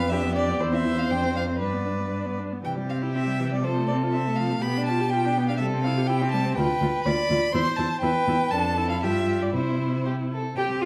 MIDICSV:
0, 0, Header, 1, 5, 480
1, 0, Start_track
1, 0, Key_signature, 0, "major"
1, 0, Tempo, 503356
1, 578, Time_signature, 2, 2, 24, 8
1, 3952, Tempo, 485437
1, 7792, Tempo, 508475
1, 10458, End_track
2, 0, Start_track
2, 0, Title_t, "Violin"
2, 0, Program_c, 0, 40
2, 0, Note_on_c, 0, 77, 75
2, 97, Note_on_c, 0, 76, 77
2, 111, Note_off_c, 0, 77, 0
2, 328, Note_off_c, 0, 76, 0
2, 334, Note_on_c, 0, 74, 74
2, 568, Note_off_c, 0, 74, 0
2, 697, Note_on_c, 0, 76, 77
2, 941, Note_on_c, 0, 77, 67
2, 956, Note_off_c, 0, 76, 0
2, 1056, Note_on_c, 0, 79, 68
2, 1070, Note_off_c, 0, 77, 0
2, 1295, Note_off_c, 0, 79, 0
2, 1300, Note_on_c, 0, 77, 58
2, 1376, Note_off_c, 0, 77, 0
2, 1540, Note_on_c, 0, 74, 52
2, 2266, Note_off_c, 0, 74, 0
2, 2523, Note_on_c, 0, 79, 65
2, 2599, Note_off_c, 0, 79, 0
2, 2761, Note_on_c, 0, 77, 55
2, 2838, Note_off_c, 0, 77, 0
2, 3002, Note_on_c, 0, 76, 64
2, 3351, Note_off_c, 0, 76, 0
2, 3368, Note_on_c, 0, 74, 56
2, 3475, Note_on_c, 0, 72, 63
2, 3489, Note_off_c, 0, 74, 0
2, 3693, Note_off_c, 0, 72, 0
2, 3699, Note_on_c, 0, 74, 56
2, 3775, Note_off_c, 0, 74, 0
2, 3929, Note_on_c, 0, 76, 62
2, 4164, Note_on_c, 0, 77, 68
2, 4179, Note_off_c, 0, 76, 0
2, 4422, Note_on_c, 0, 83, 72
2, 4437, Note_off_c, 0, 77, 0
2, 4646, Note_off_c, 0, 83, 0
2, 4652, Note_on_c, 0, 81, 69
2, 4894, Note_on_c, 0, 79, 76
2, 4908, Note_off_c, 0, 81, 0
2, 5263, Note_off_c, 0, 79, 0
2, 5278, Note_on_c, 0, 77, 65
2, 5359, Note_off_c, 0, 77, 0
2, 5365, Note_on_c, 0, 76, 72
2, 5444, Note_off_c, 0, 76, 0
2, 5612, Note_on_c, 0, 77, 73
2, 5857, Note_on_c, 0, 79, 78
2, 5872, Note_off_c, 0, 77, 0
2, 6085, Note_off_c, 0, 79, 0
2, 6091, Note_on_c, 0, 81, 79
2, 6319, Note_off_c, 0, 81, 0
2, 6325, Note_on_c, 0, 79, 85
2, 6807, Note_off_c, 0, 79, 0
2, 6813, Note_on_c, 0, 83, 92
2, 7296, Note_on_c, 0, 84, 88
2, 7311, Note_off_c, 0, 83, 0
2, 7529, Note_on_c, 0, 81, 77
2, 7544, Note_off_c, 0, 84, 0
2, 7761, Note_off_c, 0, 81, 0
2, 7767, Note_on_c, 0, 79, 89
2, 8243, Note_on_c, 0, 81, 82
2, 8257, Note_off_c, 0, 79, 0
2, 8608, Note_off_c, 0, 81, 0
2, 8613, Note_on_c, 0, 77, 65
2, 8728, Note_off_c, 0, 77, 0
2, 8734, Note_on_c, 0, 76, 71
2, 9108, Note_on_c, 0, 74, 62
2, 9122, Note_off_c, 0, 76, 0
2, 9222, Note_off_c, 0, 74, 0
2, 9228, Note_on_c, 0, 72, 64
2, 9703, Note_off_c, 0, 72, 0
2, 10183, Note_on_c, 0, 79, 61
2, 10258, Note_off_c, 0, 79, 0
2, 10427, Note_on_c, 0, 77, 57
2, 10458, Note_off_c, 0, 77, 0
2, 10458, End_track
3, 0, Start_track
3, 0, Title_t, "Violin"
3, 0, Program_c, 1, 40
3, 0, Note_on_c, 1, 71, 68
3, 111, Note_on_c, 1, 67, 61
3, 125, Note_off_c, 1, 71, 0
3, 568, Note_on_c, 1, 72, 67
3, 582, Note_off_c, 1, 67, 0
3, 1522, Note_off_c, 1, 72, 0
3, 1528, Note_on_c, 1, 71, 46
3, 2260, Note_off_c, 1, 71, 0
3, 2516, Note_on_c, 1, 67, 54
3, 3435, Note_off_c, 1, 67, 0
3, 3481, Note_on_c, 1, 69, 53
3, 4415, Note_off_c, 1, 69, 0
3, 4435, Note_on_c, 1, 67, 57
3, 5375, Note_off_c, 1, 67, 0
3, 5397, Note_on_c, 1, 69, 55
3, 5861, Note_off_c, 1, 69, 0
3, 5874, Note_on_c, 1, 67, 59
3, 6341, Note_off_c, 1, 67, 0
3, 6357, Note_on_c, 1, 71, 61
3, 6833, Note_on_c, 1, 74, 69
3, 6848, Note_off_c, 1, 71, 0
3, 7309, Note_off_c, 1, 74, 0
3, 7315, Note_on_c, 1, 72, 69
3, 7784, Note_off_c, 1, 72, 0
3, 7800, Note_on_c, 1, 71, 69
3, 8258, Note_on_c, 1, 69, 63
3, 8272, Note_off_c, 1, 71, 0
3, 8740, Note_on_c, 1, 67, 59
3, 8755, Note_off_c, 1, 69, 0
3, 9214, Note_off_c, 1, 67, 0
3, 9219, Note_on_c, 1, 64, 48
3, 9651, Note_off_c, 1, 64, 0
3, 9711, Note_on_c, 1, 67, 52
3, 9786, Note_off_c, 1, 67, 0
3, 9963, Note_on_c, 1, 69, 51
3, 10197, Note_off_c, 1, 69, 0
3, 10201, Note_on_c, 1, 79, 60
3, 10277, Note_off_c, 1, 79, 0
3, 10458, End_track
4, 0, Start_track
4, 0, Title_t, "Viola"
4, 0, Program_c, 2, 41
4, 0, Note_on_c, 2, 59, 45
4, 100, Note_off_c, 2, 59, 0
4, 105, Note_on_c, 2, 62, 50
4, 221, Note_on_c, 2, 59, 45
4, 235, Note_off_c, 2, 62, 0
4, 338, Note_on_c, 2, 62, 47
4, 352, Note_off_c, 2, 59, 0
4, 461, Note_on_c, 2, 59, 46
4, 475, Note_off_c, 2, 62, 0
4, 578, Note_off_c, 2, 59, 0
4, 583, Note_on_c, 2, 64, 51
4, 694, Note_on_c, 2, 60, 46
4, 708, Note_off_c, 2, 64, 0
4, 809, Note_on_c, 2, 64, 45
4, 823, Note_off_c, 2, 60, 0
4, 928, Note_on_c, 2, 60, 41
4, 942, Note_off_c, 2, 64, 0
4, 1044, Note_off_c, 2, 60, 0
4, 1050, Note_on_c, 2, 62, 47
4, 1170, Note_on_c, 2, 60, 40
4, 1184, Note_off_c, 2, 62, 0
4, 1292, Note_on_c, 2, 62, 41
4, 1306, Note_off_c, 2, 60, 0
4, 1409, Note_on_c, 2, 60, 37
4, 1423, Note_off_c, 2, 62, 0
4, 1529, Note_off_c, 2, 60, 0
4, 1535, Note_on_c, 2, 62, 36
4, 1657, Note_on_c, 2, 59, 37
4, 1671, Note_off_c, 2, 62, 0
4, 1776, Note_on_c, 2, 62, 34
4, 1790, Note_off_c, 2, 59, 0
4, 1911, Note_on_c, 2, 59, 30
4, 1925, Note_off_c, 2, 62, 0
4, 2024, Note_off_c, 2, 59, 0
4, 2030, Note_on_c, 2, 62, 35
4, 2151, Note_on_c, 2, 59, 34
4, 2165, Note_off_c, 2, 62, 0
4, 2280, Note_on_c, 2, 62, 32
4, 2294, Note_off_c, 2, 59, 0
4, 2407, Note_on_c, 2, 59, 30
4, 2421, Note_off_c, 2, 62, 0
4, 2511, Note_off_c, 2, 59, 0
4, 2517, Note_on_c, 2, 52, 42
4, 2640, Note_on_c, 2, 55, 40
4, 2655, Note_off_c, 2, 52, 0
4, 2765, Note_on_c, 2, 60, 44
4, 2779, Note_off_c, 2, 55, 0
4, 2884, Note_on_c, 2, 64, 41
4, 2899, Note_off_c, 2, 60, 0
4, 3005, Note_on_c, 2, 60, 46
4, 3019, Note_off_c, 2, 64, 0
4, 3118, Note_on_c, 2, 55, 42
4, 3132, Note_off_c, 2, 60, 0
4, 3240, Note_on_c, 2, 52, 46
4, 3255, Note_off_c, 2, 55, 0
4, 3364, Note_on_c, 2, 55, 43
4, 3378, Note_off_c, 2, 52, 0
4, 3478, Note_off_c, 2, 55, 0
4, 3484, Note_on_c, 2, 53, 47
4, 3604, Note_on_c, 2, 57, 45
4, 3619, Note_off_c, 2, 53, 0
4, 3726, Note_on_c, 2, 60, 46
4, 3740, Note_off_c, 2, 57, 0
4, 3845, Note_on_c, 2, 65, 42
4, 3859, Note_off_c, 2, 60, 0
4, 3953, Note_on_c, 2, 60, 48
4, 3968, Note_off_c, 2, 65, 0
4, 4081, Note_on_c, 2, 57, 43
4, 4096, Note_off_c, 2, 60, 0
4, 4201, Note_on_c, 2, 53, 47
4, 4216, Note_off_c, 2, 57, 0
4, 4320, Note_on_c, 2, 57, 44
4, 4335, Note_off_c, 2, 53, 0
4, 4437, Note_off_c, 2, 57, 0
4, 4447, Note_on_c, 2, 59, 49
4, 4576, Note_on_c, 2, 62, 45
4, 4591, Note_off_c, 2, 59, 0
4, 4691, Note_on_c, 2, 65, 50
4, 4706, Note_off_c, 2, 62, 0
4, 4803, Note_on_c, 2, 67, 47
4, 4818, Note_off_c, 2, 65, 0
4, 4923, Note_on_c, 2, 65, 52
4, 4938, Note_off_c, 2, 67, 0
4, 5050, Note_on_c, 2, 62, 47
4, 5065, Note_off_c, 2, 65, 0
4, 5172, Note_on_c, 2, 59, 52
4, 5187, Note_off_c, 2, 62, 0
4, 5286, Note_on_c, 2, 62, 48
4, 5301, Note_off_c, 2, 59, 0
4, 5399, Note_off_c, 2, 62, 0
4, 5406, Note_on_c, 2, 55, 54
4, 5529, Note_on_c, 2, 60, 51
4, 5544, Note_off_c, 2, 55, 0
4, 5648, Note_on_c, 2, 64, 54
4, 5663, Note_off_c, 2, 60, 0
4, 5762, Note_on_c, 2, 67, 51
4, 5776, Note_off_c, 2, 64, 0
4, 5881, Note_on_c, 2, 64, 60
4, 5896, Note_off_c, 2, 67, 0
4, 6000, Note_on_c, 2, 60, 53
4, 6014, Note_off_c, 2, 64, 0
4, 6123, Note_on_c, 2, 55, 55
4, 6137, Note_off_c, 2, 60, 0
4, 6236, Note_on_c, 2, 60, 54
4, 6250, Note_off_c, 2, 55, 0
4, 6352, Note_off_c, 2, 60, 0
4, 6357, Note_on_c, 2, 65, 54
4, 6436, Note_off_c, 2, 65, 0
4, 6595, Note_on_c, 2, 65, 53
4, 6674, Note_off_c, 2, 65, 0
4, 6831, Note_on_c, 2, 65, 56
4, 6911, Note_off_c, 2, 65, 0
4, 7077, Note_on_c, 2, 65, 51
4, 7156, Note_off_c, 2, 65, 0
4, 7313, Note_on_c, 2, 64, 58
4, 7392, Note_off_c, 2, 64, 0
4, 7553, Note_on_c, 2, 64, 49
4, 7632, Note_off_c, 2, 64, 0
4, 7794, Note_on_c, 2, 64, 52
4, 7870, Note_off_c, 2, 64, 0
4, 8033, Note_on_c, 2, 64, 52
4, 8109, Note_off_c, 2, 64, 0
4, 8263, Note_on_c, 2, 62, 54
4, 8500, Note_on_c, 2, 64, 58
4, 8514, Note_off_c, 2, 62, 0
4, 8737, Note_on_c, 2, 65, 58
4, 8751, Note_off_c, 2, 64, 0
4, 9218, Note_off_c, 2, 65, 0
4, 9224, Note_on_c, 2, 64, 48
4, 9988, Note_off_c, 2, 64, 0
4, 10194, Note_on_c, 2, 60, 66
4, 10458, Note_off_c, 2, 60, 0
4, 10458, End_track
5, 0, Start_track
5, 0, Title_t, "Cello"
5, 0, Program_c, 3, 42
5, 0, Note_on_c, 3, 41, 59
5, 535, Note_off_c, 3, 41, 0
5, 573, Note_on_c, 3, 40, 57
5, 1050, Note_on_c, 3, 41, 50
5, 1064, Note_off_c, 3, 40, 0
5, 1537, Note_on_c, 3, 43, 45
5, 1551, Note_off_c, 3, 41, 0
5, 2328, Note_off_c, 3, 43, 0
5, 2525, Note_on_c, 3, 48, 52
5, 4393, Note_off_c, 3, 48, 0
5, 4432, Note_on_c, 3, 47, 51
5, 5396, Note_on_c, 3, 48, 59
5, 5411, Note_off_c, 3, 47, 0
5, 6346, Note_off_c, 3, 48, 0
5, 6352, Note_on_c, 3, 38, 66
5, 6431, Note_off_c, 3, 38, 0
5, 6594, Note_on_c, 3, 38, 55
5, 6674, Note_off_c, 3, 38, 0
5, 6833, Note_on_c, 3, 38, 65
5, 6912, Note_off_c, 3, 38, 0
5, 7071, Note_on_c, 3, 38, 58
5, 7150, Note_off_c, 3, 38, 0
5, 7308, Note_on_c, 3, 40, 64
5, 7387, Note_off_c, 3, 40, 0
5, 7550, Note_on_c, 3, 40, 56
5, 7629, Note_off_c, 3, 40, 0
5, 7789, Note_on_c, 3, 40, 60
5, 7865, Note_off_c, 3, 40, 0
5, 8021, Note_on_c, 3, 40, 58
5, 8096, Note_off_c, 3, 40, 0
5, 8264, Note_on_c, 3, 41, 60
5, 8739, Note_on_c, 3, 43, 54
5, 8753, Note_off_c, 3, 41, 0
5, 9218, Note_on_c, 3, 48, 50
5, 9232, Note_off_c, 3, 43, 0
5, 10001, Note_off_c, 3, 48, 0
5, 10186, Note_on_c, 3, 67, 75
5, 10422, Note_on_c, 3, 65, 72
5, 10436, Note_off_c, 3, 67, 0
5, 10458, Note_off_c, 3, 65, 0
5, 10458, End_track
0, 0, End_of_file